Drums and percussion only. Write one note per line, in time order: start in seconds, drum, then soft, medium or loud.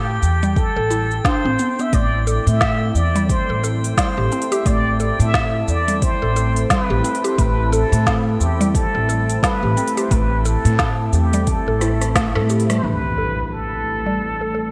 0.23 cabasa medium
0.43 cabasa soft
0.56 kick loud
0.56 cabasa soft
0.91 cabasa medium
1.11 cabasa soft
1.25 kick loud
1.25 snare loud
1.25 cabasa soft
1.59 cabasa medium
1.79 cabasa soft
1.93 kick loud
1.93 open hi-hat medium
1.93 cabasa soft
2.27 open hi-hat soft
2.27 cabasa medium
2.47 open hi-hat soft
2.47 cabasa soft
2.61 kick medium
2.61 snare medium
2.61 cabasa soft
2.95 cabasa medium
3.16 open hi-hat soft
3.16 cabasa soft
3.29 kick loud
3.29 open hi-hat medium
3.29 cabasa soft
3.64 open hi-hat soft
3.64 cabasa medium
3.84 open hi-hat soft
3.84 cabasa soft
3.97 kick loud
3.97 snare medium
3.97 open hi-hat medium
3.97 cabasa soft
4.32 open hi-hat soft
4.32 cabasa medium
4.42 open hi-hat soft
4.52 open hi-hat soft
4.52 cabasa soft
4.66 kick loud
4.66 open hi-hat medium
4.66 cabasa soft
5.00 open hi-hat soft
5.00 cabasa medium
5.20 open hi-hat soft
5.20 cabasa soft
5.34 kick medium
5.34 snare medium
5.34 cabasa soft
5.68 cabasa medium
5.88 open hi-hat soft
5.88 cabasa soft
6.02 kick loud
6.02 open hi-hat medium
6.02 cabasa soft
6.36 open hi-hat soft
6.36 cabasa medium
6.56 open hi-hat soft
6.56 cabasa soft
6.70 kick loud
6.70 snare medium
6.70 open hi-hat medium
6.70 cabasa soft
7.04 open hi-hat soft
7.04 cabasa medium
7.15 open hi-hat soft
7.25 open hi-hat soft
7.25 cabasa soft
7.38 kick medium
7.38 open hi-hat medium
7.38 cabasa soft
7.73 open hi-hat soft
7.73 cabasa medium
7.93 open hi-hat soft
7.93 cabasa soft
8.06 kick medium
8.06 snare loud
8.06 cabasa soft
8.41 cabasa medium
8.61 open hi-hat soft
8.61 cabasa soft
8.75 kick medium
8.75 open hi-hat medium
8.75 cabasa soft
9.09 open hi-hat soft
9.09 cabasa medium
9.30 open hi-hat soft
9.30 cabasa soft
9.43 kick loud
9.43 snare loud
9.43 open hi-hat medium
9.43 cabasa soft
9.77 open hi-hat soft
9.77 cabasa medium
9.88 open hi-hat medium
9.97 open hi-hat soft
9.97 cabasa soft
10.11 kick loud
10.11 open hi-hat medium
10.11 cabasa soft
10.45 open hi-hat soft
10.45 cabasa medium
10.65 open hi-hat soft
10.65 cabasa soft
10.79 kick medium
10.79 snare loud
10.79 cabasa soft
11.13 open hi-hat soft
11.13 cabasa medium
11.33 open hi-hat soft
11.33 cabasa soft
11.47 kick medium
11.47 open hi-hat medium
11.47 cabasa soft
11.81 cross-stick medium
11.81 open hi-hat soft
11.81 cabasa medium
12.01 cross-stick medium
12.01 open hi-hat soft
12.01 cabasa soft
12.15 kick loud
12.15 cross-stick medium
12.15 snare loud
12.15 open hi-hat medium
12.15 cabasa soft
12.35 cross-stick medium
12.50 open hi-hat soft
12.50 cabasa medium
12.60 open hi-hat medium
12.70 cross-stick medium
12.70 open hi-hat soft
12.70 cabasa soft